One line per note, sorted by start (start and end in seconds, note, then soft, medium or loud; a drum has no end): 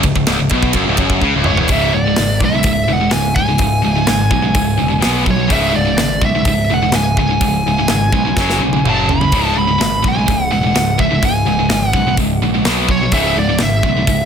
0.03 0.15 C#1 medium
0.03 0.15 C#2 medium
0.03 kick medium
0.03 ride medium
0.16 0.27 C#1 medium
0.16 0.26 C#2 medium
0.16 kick medium
0.27 0.38 C#1 medium
0.27 0.38 C#2 loud
0.27 snare loud
0.27 ride medium
0.39 0.50 C#1 medium
0.39 0.51 C#2 medium
0.49 0.73 B1 medium
0.49 0.74 B2 loud
0.49 kick medium
0.49 ride medium
0.63 kick medium
0.73 0.86 F#1 medium
0.73 0.86 F#2 loud
0.73 kick medium
0.73 ride medium
0.87 0.97 C#1 medium
0.87 0.98 C#2 medium
0.97 1.20 F#1 medium
0.97 1.22 F#2 loud
0.97 kick medium
0.97 ride medium
1.10 kick medium
1.21 1.33 C#2 loud
1.21 1.34 C#3 loud
1.21 kick medium
1.35 1.57 C#1 medium
1.35 1.58 C#2 medium
1.44 1.71 C#5 medium
1.44 mid tom medium
1.57 1.69 E1 medium
1.57 1.70 E2 medium
1.57 floor tom medium
1.68 1.90 C#1 medium
1.68 1.93 C#2 medium
1.68 1.93 G#2 medium
1.68 1.93 C#3 medium
1.68 kick medium
1.68 open hi-hat soft
1.72 1.94 E5 medium
1.94 2.15 C#1 medium
1.94 2.05 C#2 medium
1.94 2.04 G#2 medium
1.94 2.38 D5 medium
2.06 2.16 C#2 medium
2.06 2.16 G#2 medium
2.16 2.39 G#1 medium
2.16 2.39 C#2 medium
2.16 2.39 G#2 medium
2.16 snare loud
2.16 open hi-hat medium
2.40 2.62 B1 medium
2.40 2.53 C#2 medium
2.40 2.51 G#2 medium
2.40 kick medium
2.45 2.92 E5 medium
2.52 2.62 C#2 medium
2.52 2.63 G#2 medium
2.63 2.86 C#1 medium
2.63 2.86 C#2 medium
2.63 2.86 G#2 medium
2.63 kick loud
2.63 open hi-hat medium
2.88 3.09 E1 medium
2.88 2.99 C#2 medium
2.88 2.99 G#2 medium
2.93 3.12 F#5 medium
3.00 3.08 C#2 medium
3.00 3.10 G#2 medium
3.10 3.33 C#2 medium
3.10 3.33 G#2 medium
3.10 3.34 G#5 medium
3.10 snare loud
3.10 open hi-hat medium
3.14 3.55 C#1 medium
3.35 3.47 C#2 medium
3.35 3.46 G#2 medium
3.35 5.23 G#5 medium
3.35 kick medium
3.48 3.58 C#2 medium
3.48 3.57 G#2 medium
3.58 3.81 C#1 medium
3.58 3.81 C#2 medium
3.58 3.81 G#2 medium
3.58 kick loud
3.58 open hi-hat medium
3.82 4.06 C#1 medium
3.82 3.95 C#2 medium
3.82 3.94 G#2 medium
3.95 4.06 C#2 medium
3.95 4.06 G#2 medium
4.07 4.29 G#1 medium
4.07 4.29 C#2 medium
4.07 4.29 G#2 medium
4.07 snare loud
4.07 open hi-hat medium
4.30 4.52 B1 medium
4.30 4.41 C#2 medium
4.30 4.41 G#2 medium
4.30 kick medium
4.42 4.53 C#2 medium
4.42 4.54 G#2 medium
4.54 4.76 C#1 medium
4.54 4.76 C#2 medium
4.54 4.76 G#2 medium
4.54 kick loud
4.54 open hi-hat medium
4.77 4.89 C#2 medium
4.77 4.87 G#2 medium
4.82 5.01 E1 medium
4.88 5.00 C#2 medium
4.88 5.00 G#2 medium
5.00 5.23 B2 medium
5.00 5.23 F#3 medium
5.00 5.25 B3 loud
5.00 snare loud
5.00 open hi-hat soft
5.05 5.46 B1 medium
5.24 5.36 B2 medium
5.24 5.35 F#3 medium
5.24 kick medium
5.31 5.52 C#5 medium
5.36 5.47 B2 medium
5.36 5.47 F#3 medium
5.47 5.72 C#1 medium
5.47 5.70 C#2 medium
5.47 5.70 G#2 loud
5.47 5.72 C#3 medium
5.47 kick loud
5.47 open hi-hat soft
5.52 5.74 G#2 medium
5.52 5.74 C#3 loud
5.52 5.75 E5 medium
5.71 5.84 C#2 medium
5.71 5.84 G#2 medium
5.76 5.96 C#1 medium
5.76 5.86 C#2 medium
5.76 5.86 G#2 medium
5.76 6.24 D5 medium
5.85 5.97 C#2 medium
5.85 5.97 G#2 medium
5.98 6.19 G#1 medium
5.98 6.20 C#2 medium
5.98 6.20 G#2 medium
5.98 snare loud
5.98 open hi-hat medium
6.21 6.43 B1 medium
6.21 6.33 C#2 medium
6.21 6.34 G#2 medium
6.21 kick medium
6.25 6.73 E5 medium
6.35 6.46 C#2 medium
6.35 6.46 G#2 medium
6.45 6.66 C#1 medium
6.45 6.68 C#2 medium
6.45 6.68 G#2 medium
6.45 kick loud
6.45 open hi-hat medium
6.70 6.91 E1 medium
6.70 6.82 C#2 medium
6.70 6.81 G#2 medium
6.70 6.95 F#5 medium
6.83 6.94 C#2 medium
6.83 6.94 G#2 medium
6.92 7.36 C#1 medium
6.92 7.16 C#2 medium
6.92 7.16 G#2 medium
6.92 7.17 G#5 medium
6.92 snare loud
6.92 open hi-hat medium
7.17 7.28 C#2 medium
7.17 7.27 G#2 medium
7.17 8.89 G#5 medium
7.17 kick medium
7.29 7.41 C#2 medium
7.29 7.41 G#2 medium
7.40 7.62 C#1 medium
7.40 7.63 C#2 medium
7.40 7.63 G#2 medium
7.40 kick loud
7.40 open hi-hat medium
7.66 7.87 C#1 medium
7.66 7.78 C#2 medium
7.66 7.78 G#2 medium
7.79 7.89 C#2 medium
7.79 7.89 G#2 medium
7.88 8.10 G#1 medium
7.88 8.11 C#2 medium
7.88 8.11 G#2 medium
7.88 snare loud
7.88 open hi-hat medium
8.12 8.34 B1 medium
8.12 8.26 C#2 medium
8.12 8.25 G#2 medium
8.12 kick medium
8.27 8.38 C#2 medium
8.27 8.38 G#2 medium
8.37 8.58 F#1 medium
8.37 8.61 F#2 medium
8.37 kick loud
8.37 snare medium
8.41 8.61 C#3 medium
8.41 8.61 F#3 loud
8.50 snare medium
8.59 8.80 B1 medium
8.63 8.74 F#2 medium
8.63 8.74 C#3 medium
8.73 8.86 F#2 medium
8.73 8.86 C#3 medium
8.73 high tom medium
8.84 9.26 F#1 medium
8.84 9.08 F#2 medium
8.84 9.08 C#3 loud
8.84 mid tom medium
8.88 9.09 F#3 loud
8.88 9.09 A5 medium
9.09 9.22 F#2 medium
9.09 9.21 C#3 medium
9.09 9.54 B5 medium
9.09 floor tom medium
9.21 9.33 F#2 medium
9.21 9.33 C#3 medium
9.21 floor tom medium
9.32 9.53 C#1 medium
9.32 9.55 C#2 medium
9.32 9.56 G#2 medium
9.32 9.56 C#3 loud
9.32 kick loud
9.32 open hi-hat soft
9.57 9.77 C#1 medium
9.57 9.68 C#2 medium
9.57 9.67 G#2 medium
9.57 10.06 B5 medium
9.69 9.79 C#2 medium
9.69 9.80 G#2 medium
9.80 10.01 G#1 medium
9.80 10.02 C#2 medium
9.80 10.02 G#2 medium
9.80 snare loud
9.80 open hi-hat soft
10.04 10.25 B1 medium
10.04 10.17 C#2 medium
10.04 10.17 G#2 medium
10.04 kick medium
10.08 10.50 G#5 loud
10.15 10.29 C#2 medium
10.15 10.25 G#2 medium
10.19 10.29 G#2 medium
10.28 10.49 C#1 medium
10.28 10.50 C#2 medium
10.28 10.50 G#2 medium
10.28 kick loud
10.28 open hi-hat medium
10.52 10.74 E1 medium
10.52 10.64 C#2 medium
10.52 10.64 G#2 medium
10.52 11.01 F#5 medium
10.66 10.75 C#2 medium
10.66 10.75 G#2 medium
10.76 11.17 C#1 medium
10.76 10.97 C#2 medium
10.76 10.97 G#2 medium
10.76 snare loud
10.76 open hi-hat medium
10.99 11.11 C#2 medium
10.99 11.10 G#2 medium
10.99 11.24 E5 medium
10.99 kick medium
11.11 11.21 C#2 medium
11.11 11.21 G#2 medium
11.22 11.44 C#1 medium
11.22 11.44 C#2 medium
11.22 11.44 G#2 medium
11.22 11.89 G#5 medium
11.22 kick loud
11.22 open hi-hat medium
11.45 11.67 C#1 medium
11.45 11.58 C#2 medium
11.45 11.58 G#2 medium
11.59 11.69 C#2 medium
11.59 11.70 G#2 medium
11.70 11.91 G#1 medium
11.70 11.92 C#2 medium
11.70 11.92 G#2 medium
11.70 snare loud
11.70 open hi-hat medium
11.89 12.15 F#5 medium
11.93 12.15 B1 medium
11.93 12.06 C#2 medium
11.93 12.07 G#2 medium
11.93 kick medium
12.08 12.19 C#2 medium
12.08 12.19 G#2 medium
12.17 12.39 C#1 medium
12.17 12.40 C#2 medium
12.17 12.40 G#2 medium
12.17 kick loud
12.17 open hi-hat medium
12.42 12.63 A#1 medium
12.42 12.54 C#2 medium
12.42 12.54 G#2 medium
12.55 12.66 C#2 medium
12.55 12.66 G#2 medium
12.65 13.07 B1 medium
12.65 12.88 B2 medium
12.65 12.88 F#3 loud
12.65 12.89 B3 loud
12.65 snare loud
12.65 open hi-hat medium
12.89 13.02 B2 medium
12.89 13.01 F#3 medium
12.89 13.12 C#5 medium
12.89 kick medium
13.03 13.14 B2 medium
13.03 13.14 F#3 medium
13.12 13.34 C#1 medium
13.12 13.36 C#2 medium
13.12 13.36 G#2 medium
13.12 13.36 C#3 loud
13.12 13.38 E5 loud
13.12 kick loud
13.12 open hi-hat soft
13.37 13.58 C#1 medium
13.37 13.48 C#2 medium
13.37 13.48 G#2 medium
13.37 13.62 D5 loud
13.49 13.60 C#2 medium
13.49 13.59 G#2 medium
13.58 13.81 G#1 medium
13.58 13.83 C#2 medium
13.58 13.82 G#2 medium
13.58 snare loud
13.58 open hi-hat medium
13.63 14.25 E5 medium
13.83 14.04 B1 medium
13.83 13.97 C#2 medium
13.83 13.96 G#2 medium
13.83 kick medium
13.98 14.08 C#2 medium
13.98 14.08 G#2 medium
14.07 14.25 C#1 medium
14.07 14.25 C#2 medium
14.07 14.25 G#2 medium
14.07 kick loud
14.07 open hi-hat medium